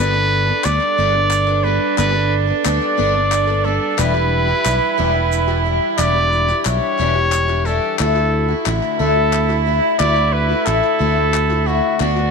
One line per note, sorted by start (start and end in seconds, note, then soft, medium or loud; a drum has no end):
0.00 0.50 G1 loud
0.00 0.13 G3 medium
0.00 0.14 B3 medium
0.00 0.14 D4 medium
0.00 3.99 D4 loud
0.00 0.12 A4 medium
0.00 0.66 B4 loud
0.13 0.47 D4 medium
0.13 0.45 A4 medium
0.13 clap soft
0.46 0.63 B3 soft
0.46 0.65 D4 medium
0.46 0.64 A4 medium
0.63 0.78 D2 loud
0.63 0.96 G3 medium
0.63 0.97 B3 medium
0.63 0.98 D4 medium
0.63 0.99 A4 medium
0.63 1.65 D5 loud
0.63 clap loud
0.63 shaker loud
0.81 clap soft
0.98 1.78 G1 medium
0.98 1.14 G3 medium
0.98 1.15 B3 medium
0.98 1.15 D4 medium
0.98 1.12 A4 loud
1.14 1.49 B3 soft
1.14 1.48 D4 soft
1.14 1.46 A4 soft
1.30 clap medium
1.30 shaker loud
1.47 1.64 B3 soft
1.47 1.64 D4 medium
1.47 1.64 A4 medium
1.47 clap soft
1.63 1.96 G3 medium
1.63 1.97 B3 medium
1.63 1.98 D4 medium
1.63 1.98 A4 medium
1.63 1.98 B4 loud
1.97 2.51 G1 loud
1.97 2.14 G3 medium
1.97 2.15 B3 medium
1.97 2.14 D4 medium
1.97 2.12 A4 medium
1.97 2.36 B4 loud
1.97 clap loud
1.97 shaker loud
2.13 2.49 B3 soft
2.13 2.47 D4 medium
2.13 2.46 A4 medium
2.47 2.64 B3 soft
2.47 2.65 D4 soft
2.47 2.64 A4 soft
2.64 2.78 D2 medium
2.64 2.96 G3 medium
2.64 2.97 B3 medium
2.64 2.98 D4 medium
2.64 2.98 A4 medium
2.64 3.67 D5 loud
2.64 clap loud
2.64 shaker loud
2.82 clap soft
2.97 3.78 G1 medium
2.97 3.14 G3 medium
2.97 3.15 B3 medium
2.97 3.14 D4 loud
2.97 3.13 A4 medium
3.14 3.49 B3 soft
3.14 3.48 D4 soft
3.14 3.46 A4 medium
3.32 clap medium
3.32 shaker loud
3.47 3.64 B3 soft
3.47 3.65 D4 soft
3.47 3.64 A4 medium
3.47 clap soft
3.64 3.97 G3 medium
3.64 3.98 B3 medium
3.64 3.98 D4 medium
3.64 4.01 A4 medium
3.64 3.99 A4 medium
3.97 4.52 E1 loud
3.97 4.14 E2 medium
3.97 4.15 B2 medium
3.97 4.15 E3 medium
3.97 4.15 G3 medium
3.97 4.14 D4 medium
3.97 7.65 E4 loud
3.97 4.12 G4 medium
3.97 4.99 B4 loud
3.97 clap loud
3.97 shaker loud
4.14 4.49 E3 soft
4.14 4.48 G3 medium
4.14 4.47 D4 medium
4.14 4.46 G4 medium
4.14 clap soft
4.47 4.63 E3 soft
4.47 4.64 G3 medium
4.47 4.65 D4 medium
4.47 4.65 G4 medium
4.64 4.79 B1 loud
4.64 4.97 E3 medium
4.64 4.97 G3 medium
4.64 4.98 D4 medium
4.64 4.98 G4 medium
4.64 clap loud
4.64 shaker loud
4.97 5.78 E1 loud
4.97 5.15 E2 medium
4.97 5.15 B2 medium
4.97 5.15 E3 medium
4.97 5.15 G3 medium
4.97 5.14 D4 medium
4.97 5.12 G4 loud
4.97 5.62 B4 medium
5.13 5.50 E3 soft
5.13 5.49 G3 soft
5.13 5.48 D4 soft
5.13 5.46 G4 soft
5.32 shaker loud
5.48 5.63 E3 soft
5.48 5.64 G3 medium
5.48 5.65 D4 medium
5.48 5.65 G4 medium
5.48 clap soft
5.64 5.98 E3 medium
5.64 5.99 G3 medium
5.64 5.99 D4 medium
5.64 6.00 G4 medium
5.98 6.51 E1 loud
5.98 6.15 E2 medium
5.98 6.15 B2 medium
5.98 6.16 E3 medium
5.98 6.16 G3 loud
5.98 6.15 D4 medium
5.98 6.14 G4 medium
5.98 6.62 D5 loud
5.98 clap loud
5.98 shaker loud
6.15 6.50 G3 soft
6.15 6.48 D4 medium
6.15 6.47 G4 medium
6.32 shaker soft
6.48 6.64 E3 soft
6.48 6.65 G3 medium
6.48 6.66 D4 medium
6.48 6.65 G4 medium
6.48 clap soft
6.48 shaker soft
6.65 6.79 B1 medium
6.65 6.99 E3 medium
6.65 6.99 G3 medium
6.65 7.00 D4 medium
6.65 7.00 G4 medium
6.65 7.67 C#5 loud
6.65 clap loud
6.65 shaker loud
6.99 7.78 E1 medium
6.99 7.16 E2 medium
6.99 7.16 B2 loud
6.99 7.16 E3 loud
6.99 7.16 G3 loud
6.99 7.16 D4 loud
6.99 7.14 G4 loud
6.99 clap soft
7.15 7.51 E3 soft
7.15 7.49 G3 medium
7.15 7.48 D4 soft
7.15 7.47 G4 medium
7.32 clap medium
7.32 shaker loud
7.48 7.64 E3 soft
7.48 7.66 G3 medium
7.48 7.66 D4 medium
7.48 7.65 G4 medium
7.48 clap soft
7.66 7.99 E3 medium
7.66 8.00 G3 medium
7.66 8.00 D4 medium
7.66 8.01 G4 medium
7.66 7.99 A4 medium
7.66 clap soft
7.66 shaker soft
7.99 8.53 D2 loud
7.99 8.16 D3 medium
7.99 8.16 A3 medium
7.99 11.97 E4 loud
7.99 8.16 E4 medium
7.99 8.14 F#4 medium
7.99 8.62 A4 loud
7.99 clap loud
8.16 8.51 A3 soft
8.16 8.49 E4 soft
8.16 8.47 F#4 medium
8.16 clap soft
8.48 8.65 A3 soft
8.48 8.66 E4 medium
8.48 8.65 F#4 medium
8.65 8.79 A1 medium
8.65 8.98 D3 medium
8.65 8.99 A3 medium
8.65 9.00 E4 medium
8.65 9.00 F#4 medium
8.65 clap loud
8.83 clap soft
8.99 9.79 D2 medium
8.99 9.16 D3 medium
8.99 9.16 A3 medium
8.99 9.17 E4 medium
8.99 9.15 F#4 medium
8.99 9.62 A4 loud
9.16 9.51 A3 soft
9.16 9.50 E4 soft
9.16 9.47 F#4 soft
9.33 clap medium
9.49 9.65 A3 soft
9.49 9.66 E4 soft
9.49 9.66 F#4 medium
9.49 clap soft
9.65 9.98 D3 medium
9.65 9.99 A3 medium
9.65 10.00 E4 medium
9.65 10.01 F#4 medium
9.99 10.53 D2 loud
9.99 10.16 D3 medium
9.99 10.17 A3 loud
9.99 10.17 E4 loud
9.99 10.15 F#4 loud
9.99 10.34 D5 loud
9.99 clap medium
10.16 10.51 A3 soft
10.16 10.49 E4 soft
10.16 10.47 F#4 medium
10.16 clap soft
10.33 10.67 B4 loud
10.49 10.66 A3 soft
10.49 10.67 E4 medium
10.49 10.66 F#4 medium
10.66 10.80 A1 loud
10.66 10.98 D3 medium
10.66 10.99 A3 medium
10.66 11.00 E4 medium
10.66 11.00 F#4 medium
10.66 11.68 A4 loud
10.66 clap loud
10.84 clap soft
10.99 11.80 D2 medium
10.99 11.16 D3 medium
10.99 11.17 A3 medium
10.99 11.16 E4 loud
10.99 11.14 F#4 medium
11.16 11.51 A3 soft
11.16 11.50 E4 soft
11.16 11.48 F#4 soft
11.34 clap medium
11.49 11.66 A3 soft
11.49 11.67 E4 soft
11.49 11.66 F#4 medium
11.49 clap soft
11.66 11.99 D3 medium
11.66 12.00 A3 medium
11.66 12.01 E4 medium
11.66 12.00 F#4 medium
11.66 12.01 F#4 medium
12.00 12.31 D2 loud
12.00 12.17 D3 medium
12.00 12.17 B3 medium
12.00 12.31 D4 loud
12.00 12.17 D4 medium
12.00 12.31 F#4 loud
12.00 12.14 F#4 medium
12.00 clap medium
12.16 12.31 B3 soft
12.16 12.31 D4 medium
12.16 12.31 F#4 medium
12.16 clap soft